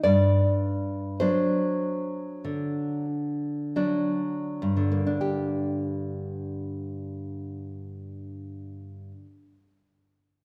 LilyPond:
\new Staff \with { instrumentName = "Nylon-string guitar" } { \time 4/4 \key g \minor \tempo 4 = 45 << { d''4 c''2~ c''8 r8 | <g, d bes d' g'>1 | } \\ { g,4 <fis d'>4 d4 <fis d'>4 | r1 | } >> }